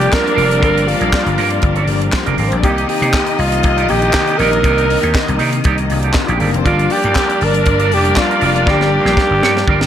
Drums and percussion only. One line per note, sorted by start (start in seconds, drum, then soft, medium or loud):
0.01 closed hi-hat medium
0.13 kick loud
0.13 snare loud
0.13 clap loud
0.27 closed hi-hat soft
0.38 open hi-hat medium
0.51 closed hi-hat medium
0.63 kick loud
0.63 closed hi-hat medium
0.77 closed hi-hat soft
0.88 open hi-hat medium
1.01 closed hi-hat soft
1.13 kick loud
1.13 snare loud
1.13 clap loud
1.27 closed hi-hat soft
1.38 open hi-hat medium
1.50 closed hi-hat medium
1.62 kick loud
1.62 closed hi-hat medium
1.76 closed hi-hat soft
1.87 open hi-hat medium
2.01 closed hi-hat medium
2.13 kick loud
2.13 snare loud
2.13 clap loud
2.26 closed hi-hat soft
2.38 open hi-hat medium
2.52 closed hi-hat medium
2.63 kick loud
2.63 closed hi-hat medium
2.78 closed hi-hat soft
2.89 open hi-hat medium
3.02 closed hi-hat soft
3.13 kick loud
3.13 snare loud
3.13 clap loud
3.27 closed hi-hat soft
3.39 open hi-hat medium
3.52 closed hi-hat medium
3.63 kick loud
3.63 closed hi-hat medium
3.78 closed hi-hat soft
3.89 open hi-hat medium
4.02 closed hi-hat soft
4.13 kick loud
4.13 snare loud
4.13 clap loud
4.28 closed hi-hat soft
4.39 open hi-hat medium
4.53 closed hi-hat medium
4.64 kick loud
4.64 closed hi-hat medium
4.78 closed hi-hat medium
4.90 open hi-hat medium
5.03 closed hi-hat soft
5.15 kick loud
5.15 snare loud
5.15 clap loud
5.28 closed hi-hat soft
5.39 open hi-hat medium
5.53 closed hi-hat medium
5.64 kick loud
5.64 closed hi-hat medium
5.78 closed hi-hat soft
5.90 open hi-hat medium
6.03 closed hi-hat medium
6.14 kick loud
6.14 snare loud
6.14 clap medium
6.28 closed hi-hat soft
6.40 open hi-hat medium
6.54 closed hi-hat medium
6.66 kick loud
6.66 closed hi-hat medium
6.79 closed hi-hat soft
6.90 open hi-hat medium
7.03 closed hi-hat medium
7.15 kick loud
7.15 snare loud
7.15 clap loud
7.30 closed hi-hat soft
7.41 open hi-hat medium
7.54 closed hi-hat medium
7.66 kick loud
7.66 closed hi-hat medium
7.79 closed hi-hat soft
7.92 open hi-hat medium
8.05 closed hi-hat medium
8.16 kick loud
8.16 snare loud
8.16 clap loud
8.31 closed hi-hat soft
8.41 open hi-hat medium
8.56 closed hi-hat medium
8.67 kick loud
8.67 snare medium
8.81 snare medium
9.06 snare medium
9.17 kick loud
9.17 snare medium
9.43 snare medium
9.57 snare medium
9.68 kick loud
9.81 snare medium